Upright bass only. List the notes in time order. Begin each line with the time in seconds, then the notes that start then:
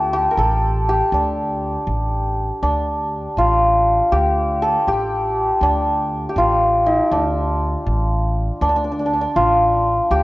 Already playing: D2
0.37 A1
1.12 D2
1.87 A1
2.63 D2
3.37 A1
4.12 D2
4.87 A1
5.61 D2
6.36 A1
7.12 D2
7.87 A1
8.61 D2
9.36 A1
10.11 D2